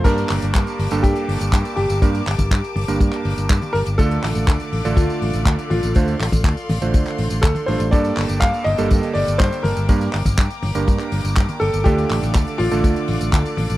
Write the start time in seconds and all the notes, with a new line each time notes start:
0.04 G2 A#3 D4 G4 A#4 A5 D6, kick, closed hi-hat, crash, tambourine
0.18 closed hi-hat, tambourine
0.29 G1, clap, open hi-hat
0.42 G1, closed hi-hat, tambourine
0.54 G2, kick, clap, closed hi-hat, tambourine
0.67 closed hi-hat, tambourine
0.79 G1, open hi-hat
0.91 G1 G2 A#3 D4 G4 A4, closed hi-hat, tambourine
1.03 G2 G4, kick, closed hi-hat, tambourine
1.16 closed hi-hat, tambourine
1.29 G1, open hi-hat
1.40 G1, closed hi-hat, tambourine
1.53 G2, kick, clap, closed hi-hat, tambourine
1.65 closed hi-hat, tambourine
1.76 G1 G4, open hi-hat, high tom
1.90 G1, closed hi-hat, tambourine
2.02 G2 A#3 D4 G4 A#4, kick, closed hi-hat, tambourine
2.15 closed hi-hat, tambourine
2.27 G1, clap, open hi-hat
2.39 G1, kick, closed hi-hat, high tom, tambourine
2.51 G2, kick, clap, closed hi-hat, tambourine
2.64 closed hi-hat, tambourine
2.76 G1, open hi-hat, high tom
2.88 G1 G2 A#3 D4 G4 A#4, closed hi-hat, tambourine
3.00 G2, kick, closed hi-hat, tambourine
3.13 clap, closed hi-hat, tambourine
3.25 G1, open hi-hat
3.37 G1, closed hi-hat, tambourine
3.50 G2, kick, clap, closed hi-hat, tambourine
3.62 closed hi-hat, high tom, tambourine
3.73 G1 A#4, open hi-hat
3.86 G1, closed hi-hat, tambourine
3.98 D2 D3 A3 D4 F4 A4 D5 F5 D6, kick, closed hi-hat, tambourine
4.11 closed hi-hat, tambourine
4.24 A1, clap, open hi-hat
4.35 A1, closed hi-hat, tambourine
4.48 D2, kick, clap, closed hi-hat, tambourine
4.60 closed hi-hat, tambourine
4.73 A1, open hi-hat
4.85 A1 D3 A3 D4 F4 A4, closed hi-hat, tambourine
4.96 D2 F4, kick, closed hi-hat, tambourine
5.09 closed hi-hat, tambourine
5.22 A1, open hi-hat
5.33 A1, closed hi-hat, tambourine
5.46 D2, kick, clap, closed hi-hat, tambourine
5.59 closed hi-hat, tambourine
5.70 A1 F4, open hi-hat, high tom
5.83 A1, closed hi-hat, tambourine
5.95 D2 D3 A3 D4 F4 C5 C6, kick, closed hi-hat, tambourine
6.08 closed hi-hat, tambourine
6.20 A1, clap, open hi-hat
6.32 A1, kick, closed hi-hat, high tom, tambourine
6.44 D2, kick, clap, closed hi-hat, tambourine
6.57 closed hi-hat, tambourine
6.69 A1, open hi-hat, high tom
6.82 A1 D3 A3 D4 F4 C5, closed hi-hat, tambourine
6.94 D2, kick, closed hi-hat, tambourine
7.06 clap, closed hi-hat, tambourine
7.18 A1, open hi-hat
7.30 A1, closed hi-hat, tambourine
7.42 D2 A4, kick, clap, closed hi-hat, tambourine
7.55 closed hi-hat, high tom, tambourine
7.66 A1 G2 A3 D4 F4 A4 C5, open hi-hat
7.80 A1, closed hi-hat, tambourine
7.91 G2 A#3 D4 G4 A4 D5 G5 A5 D6, kick, closed hi-hat, tambourine
8.04 closed hi-hat, tambourine
8.17 G1, clap, open hi-hat
8.28 G1, closed hi-hat, tambourine
8.40 G2 F5, kick, clap, closed hi-hat, tambourine
8.53 closed hi-hat, tambourine
8.64 G1 D#5, open hi-hat
8.78 G1 G2 D3 A#3 G4 A4, closed hi-hat, tambourine
8.91 G2, kick, closed hi-hat, tambourine
9.03 closed hi-hat, tambourine
9.14 G1 D5, open hi-hat
9.27 G1, closed hi-hat, tambourine
9.38 G2 C5, kick, clap, closed hi-hat, tambourine
9.52 closed hi-hat, tambourine
9.63 G1 A#4, open hi-hat, high tom
9.77 G1, closed hi-hat, tambourine
9.89 G2 A#3 D4 G4 A#4 A#5, kick, closed hi-hat, tambourine
10.01 closed hi-hat, tambourine
10.13 G1, clap, open hi-hat
10.25 G1, kick, closed hi-hat, high tom, tambourine
10.38 G2, kick, clap, closed hi-hat, tambourine
10.50 closed hi-hat, tambourine
10.63 G1, open hi-hat, high tom
10.75 G1 G2 A#3 D4 G4 A#4, closed hi-hat, tambourine
10.88 G2, kick, closed hi-hat, tambourine
11.00 clap, closed hi-hat, tambourine
11.12 G1, open hi-hat
11.24 G1, closed hi-hat, tambourine
11.36 G2, kick, clap, closed hi-hat, tambourine
11.49 closed hi-hat, high tom, tambourine
11.60 G1 A4, open hi-hat
11.74 G1, closed hi-hat, tambourine
11.84 D2 D3 A3 D4 F4 G4 A4 D5 F5, kick, closed hi-hat, tambourine
11.98 closed hi-hat, tambourine
12.10 A1, clap, open hi-hat
12.23 A1, closed hi-hat, tambourine
12.35 D2, kick, clap, closed hi-hat, tambourine
12.47 closed hi-hat, tambourine
12.58 A1 F4, open hi-hat
12.71 A1 D3 A3 D4 F4 A4, closed hi-hat, tambourine
12.84 D2, kick, closed hi-hat, tambourine
12.96 closed hi-hat, tambourine
13.08 A1, open hi-hat
13.21 A1, closed hi-hat, tambourine
13.33 D2, kick, clap, closed hi-hat, tambourine
13.45 closed hi-hat, tambourine
13.57 A1, open hi-hat, high tom
13.70 A1, closed hi-hat, tambourine